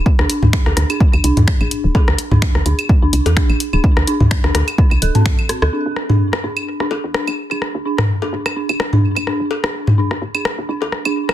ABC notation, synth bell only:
X:1
M:4/4
L:1/16
Q:"Swing 16ths" 1/4=127
K:C
V:1 name="Synth bell"
z D z2 D z2 D z2 D z2 D z2 | D z2 D z2 D z2 D z2 D z2 D | z2 D z2 D z2 D z A C z2 C A | D z2 D z2 D z2 D z2 D z2 D |
z2 D z2 D z2 D z2 D z2 D z | z D z2 D z2 D z2 D z2 D z2 |]